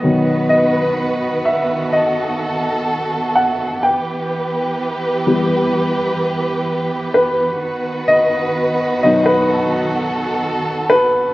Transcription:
Already playing: string section B3, grand piano D#5
0.03 grand piano B2 D#3 F#3, string section D#3 F#4 B4
0.49 grand piano D#5
1.45 grand piano E5
1.93 string section A4, grand piano D#5
3.35 grand piano F#5
3.83 string section E3 G4 B4, grand piano G5
5.27 grand piano E3 G3 B3
7.14 grand piano B4
7.63 string section D#3 B3 F#4 B4
8.08 grand piano D#5
9.03 grand piano B2 F#3 D#4 D#5
9.26 grand piano B4
9.50 string section A4
10.90 grand piano B4

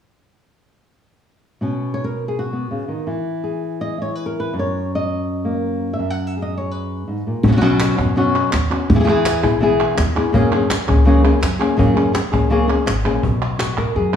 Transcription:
1.61 nylon-string guitar B2 B3 C#4 F#4
1.94 nylon-string guitar C#5
2.04 nylon-string guitar A#4
2.28 nylon-string guitar G#4
2.39 nylon-string guitar F#4
2.53 nylon-string guitar B3
2.71 nylon-string guitar C#3
2.88 nylon-string guitar D#3
3.07 nylon-string guitar E3
3.44 nylon-string guitar G#4
3.81 nylon-string guitar D#5
3.98 nylon-string guitar E4 C#5
4.15 nylon-string guitar B4
4.26 nylon-string guitar A#4
4.40 nylon-string guitar B4
4.53 nylon-string guitar F#2
4.59 nylon-string guitar C#5
4.95 nylon-string guitar D#5
5.45 nylon-string guitar A#3
5.93 nylon-string guitar E5
5.99 nylon-string guitar F#2
6.10 nylon-string guitar F#5
6.27 nylon-string guitar E5
6.37 nylon-string guitar G#4
6.42 nylon-string guitar D#5
6.57 nylon-string guitar C#5
6.71 nylon-string guitar B4
7.08 nylon-string guitar G#2
7.27 nylon-string guitar A#2
7.43 upright bass B1, muted nylon-string guitar stroke, cajon bass
7.48 nylon-string guitar F#3 B3 C#4 F#4
7.52 nylon-string guitar F#3 B3 C#4 F#4
7.56 nylon-string guitar F#3 B3 C#4 F#4
7.61 nylon-string guitar B2 F#3 B3 C#4 F#4
7.80 cajon slap, clap
7.97 upright bass F#2, nylon-string guitar B3 C#4 F#4, cajon bass, clap
8.16 nylon-string guitar B2 F#3 B3 C#4 F#4
8.35 clap
8.52 upright bass D#2, muted nylon-string guitar stroke, cajon slap, clap
8.70 nylon-string guitar B3 C#4 F#4, cajon slap, clap
8.89 upright bass E2, muted nylon-string guitar stroke, cajon bass
8.95 nylon-string guitar E3 B3 E4 G#4
8.99 nylon-string guitar E3 B3 E4 G#4
9.04 nylon-string guitar E3 B3 E4 G#4
9.08 nylon-string guitar E3 B3 E4 G#4, cajon slap
9.26 cajon slap, clap
9.43 upright bass B1, nylon-string guitar B3 E4 G#4, cajon bass, clap
9.60 nylon-string guitar E3 B3 E4 G#4, cajon slap
9.80 clap
9.97 upright bass E2, muted nylon-string guitar stroke, cajon slap, clap
10.16 nylon-string guitar B3 E4 G#4
10.32 upright bass F#2, nylon-string guitar C#3 F#3 A#3 C#4 G#4, cajon bass
10.52 nylon-string guitar A#3 C#4 G#4
10.70 muted nylon-string guitar stroke, cajon slap, clap
10.87 upright bass C#2, nylon-string guitar A#3 C#4 G#4, cajon bass, clap
11.05 nylon-string guitar C#3 F#3 A#3 C#4 G#4
11.24 nylon-string guitar A#3 C#4 G#4, clap
11.41 upright bass F#2, muted nylon-string guitar stroke, cajon bass, cajon slap, clap
11.59 nylon-string guitar A#3 C#4 G#4
11.77 upright bass F#2, nylon-string guitar C#3 F#3 A#3 C#4 G#4, cajon bass
11.95 nylon-string guitar A#3 C#4 G#4, cajon slap, clap
12.13 muted nylon-string guitar stroke, cajon slap, clap
12.32 upright bass C#2, nylon-string guitar A#3 C#4 G#4, cajon bass
12.50 nylon-string guitar C#3 F#3 A#3 C#4 G#4
12.68 nylon-string guitar A#3 C#4 G#4, clap
12.86 upright bass G#1, muted nylon-string guitar stroke, cajon slap, clap
13.05 upright bass A#1, nylon-string guitar A#3 C#4 G#4, cajon slap, clap
13.23 upright bass B1, nylon-string guitar B2, cajon bass
13.59 nylon-string guitar F#4, cajon slap, clap
13.78 nylon-string guitar A#4, cajon bass
13.96 upright bass F#2, nylon-string guitar F#2 G#4

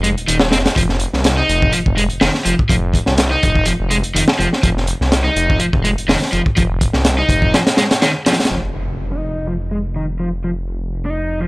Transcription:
Already playing: detuned saw bass F1
0.03 overdriven electric guitar G#3, closed hi-hat
0.17 detuned saw bass D#1, closed hi-hat
0.27 detuned saw bass D#1, overdriven electric guitar D#3, closed hi-hat
0.39 snare
0.52 detuned saw bass F1, overdriven electric guitar C4, snare, closed hi-hat
0.66 snare, closed hi-hat
0.76 detuned saw bass F1, overdriven electric guitar F3, kick, closed hi-hat
0.89 snare
0.99 closed hi-hat
1.13 detuned saw bass C2, snare
1.24 snare, closed hi-hat
1.37 overdriven electric guitar D#4
1.49 detuned saw bass F1, closed hi-hat
1.62 kick
1.72 detuned saw bass F1, overdriven electric guitar F3, closed hi-hat
1.86 detuned saw bass F1, kick
1.97 overdriven electric guitar G#3, closed hi-hat
2.10 detuned saw bass F1, closed hi-hat
2.21 detuned saw bass F1, overdriven electric guitar D#3, snare, open hi-hat
2.34 snare
2.45 detuned saw bass F1, overdriven electric guitar F3, closed hi-hat
2.59 kick
2.69 detuned saw bass F1, overdriven electric guitar F3, kick, closed hi-hat
2.94 kick, closed hi-hat
3.06 detuned saw bass C2, snare
3.18 snare, closed hi-hat
3.31 overdriven electric guitar D#4
3.43 detuned saw bass F1, kick, closed hi-hat
3.55 kick
3.65 overdriven electric guitar F3, closed hi-hat
3.80 detuned saw bass F1
3.90 overdriven electric guitar G#3, closed hi-hat
4.03 detuned saw bass F1, closed hi-hat
4.15 detuned saw bass F1, overdriven electric guitar D#3, closed hi-hat
4.28 snare
4.39 detuned saw bass F1, overdriven electric guitar F3, closed hi-hat
4.53 snare
4.63 detuned saw bass F1, overdriven electric guitar F3, kick, closed hi-hat
4.77 snare
4.87 closed hi-hat
5.01 detuned saw bass C2, snare
5.12 snare, closed hi-hat
5.24 overdriven electric guitar D#4
5.36 detuned saw bass F1, closed hi-hat
5.50 kick
5.60 detuned saw bass F1, overdriven electric guitar F3, closed hi-hat
5.73 detuned saw bass F1, kick
5.84 overdriven electric guitar G#3, closed hi-hat
5.97 detuned saw bass F1, closed hi-hat
6.08 detuned saw bass F1, overdriven electric guitar D#3, snare, open hi-hat
6.22 snare
6.32 detuned saw bass F1, overdriven electric guitar F3, closed hi-hat
6.46 kick
6.56 detuned saw bass F1, overdriven electric guitar F3, kick, closed hi-hat
6.81 kick, closed hi-hat
6.93 detuned saw bass C2, snare
7.05 snare, closed hi-hat
7.18 overdriven electric guitar D#4
7.29 detuned saw bass F1, kick, closed hi-hat
7.42 kick
7.54 overdriven electric guitar F3, snare, closed hi-hat
7.67 snare, closed hi-hat
7.77 overdriven electric guitar G#3, snare, closed hi-hat
7.91 snare, closed hi-hat
8.02 overdriven electric guitar D#3, snare, closed hi-hat
8.26 overdriven electric guitar F3, snare, closed hi-hat
8.33 snare, closed hi-hat
8.40 snare, closed hi-hat
8.45 snare, closed hi-hat
8.50 detuned saw bass F1, overdriven electric guitar F3, impact
9.12 overdriven electric guitar D#4
9.47 overdriven electric guitar F3
9.71 overdriven electric guitar G#3
9.96 overdriven electric guitar D#3
10.20 overdriven electric guitar F3
10.44 overdriven electric guitar F3
11.05 overdriven electric guitar D#4
11.40 overdriven electric guitar F3

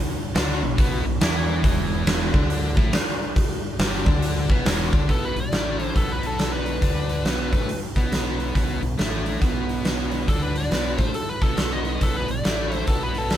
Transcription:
0.35 fingered electric bass D2, overdriven electric guitar D3 D4, snare, open hi-hat
0.62 fingered electric bass B1, overdriven electric guitar B2
0.77 fingered electric bass B1, overdriven electric guitar B2 B3, kick, open hi-hat
1.05 fingered electric bass B1, overdriven electric guitar B2
1.21 fingered electric bass E2, overdriven electric guitar E3 E4, snare, open hi-hat
1.63 fingered electric bass E1, overdriven electric guitar E2 E3, kick, open hi-hat
2.07 snare, open hi-hat
2.33 fingered electric bass D2, overdriven electric guitar D3 D4, kick
2.50 open hi-hat
2.77 fingered electric bass A1, overdriven electric guitar A2 A3, kick
2.93 snare, open hi-hat
3.36 kick, open hi-hat
3.79 fingered electric bass G1, overdriven electric guitar G2 G3, snare, open hi-hat
4.05 fingered electric bass D2, overdriven electric guitar D3 D4, kick
4.22 open hi-hat
4.49 fingered electric bass B1, overdriven electric guitar B2 B3, kick
4.65 fingered electric bass E1, overdriven electric guitar E2 E3, snare, open hi-hat
4.93 fingered electric bass D2, overdriven electric guitar D3 D4, kick
5.08 fingered electric bass B1, overdriven electric guitar B2 B3, lead electric guitar A4, kick, open hi-hat
5.25 lead electric guitar B4
5.35 fingered electric bass B1, overdriven electric guitar B2, open hi-hat
5.40 lead electric guitar D5
5.51 fingered electric bass A1, overdriven electric guitar A2 A3, snare, open hi-hat
5.80 lead electric guitar C5, open hi-hat
5.95 fingered electric bass B1, overdriven electric guitar B2 B3, lead electric guitar A4, kick, open hi-hat
6.12 lead electric guitar B4
6.23 lead electric guitar A4, open hi-hat
6.39 lead electric guitar A4, snare, open hi-hat
6.53 lead electric guitar B4
6.66 open hi-hat
6.81 fingered electric bass D2, overdriven electric guitar D3 D4, kick, open hi-hat
7.09 open hi-hat
7.25 fingered electric bass B1, overdriven electric guitar B2 B3, snare, open hi-hat
7.52 fingered electric bass A2, overdriven electric guitar A3 A4, kick, open hi-hat
7.69 muted overdriven electric guitar stroke, muted fingered electric bass stroke, open hi-hat
7.96 fingered electric bass B1, overdriven electric guitar B2 B3, kick, open hi-hat
8.12 snare, open hi-hat
8.40 open hi-hat
8.55 fingered electric bass B1, overdriven electric guitar B2 B3, kick, open hi-hat
8.82 fingered electric bass B1, overdriven electric guitar B2, open hi-hat
8.98 fingered electric bass A1, overdriven electric guitar A2 A3, snare, open hi-hat
9.26 open hi-hat
9.41 fingered electric bass B1, overdriven electric guitar B2 B3, kick, open hi-hat
9.69 open hi-hat
9.85 snare, open hi-hat
10.12 open hi-hat
10.27 fingered electric bass D2, overdriven electric guitar D3 D4, lead electric guitar A4, kick, open hi-hat
10.42 lead electric guitar B4
10.56 lead electric guitar D5, open hi-hat
10.71 fingered electric bass B1, overdriven electric guitar B2 B3, snare, open hi-hat
10.98 fingered electric bass A2, overdriven electric guitar A3 A4, lead electric guitar C5, kick, open hi-hat
11.13 lead electric guitar A4, muted overdriven electric guitar stroke, muted fingered electric bass stroke, open hi-hat
11.29 lead electric guitar B4
11.41 fingered electric bass B1, overdriven electric guitar B2 B3, lead electric guitar A4, kick, open hi-hat
11.57 lead electric guitar A4, snare, open hi-hat
11.73 lead electric guitar D#5
11.85 open hi-hat
12.01 fingered electric bass B1, overdriven electric guitar B2 B3, lead electric guitar A4, kick, open hi-hat
12.17 lead electric guitar B4
12.28 fingered electric bass B1, overdriven electric guitar B2, lead electric guitar D5, open hi-hat
12.43 fingered electric bass A1, overdriven electric guitar A2 A3, snare, open hi-hat
12.72 lead electric guitar C5, open hi-hat
12.87 fingered electric bass B1, overdriven electric guitar B2 B3, lead electric guitar A4, kick, open hi-hat
13.03 lead electric guitar B4
13.15 lead electric guitar A4, open hi-hat
13.30 lead electric guitar A4, snare, open hi-hat

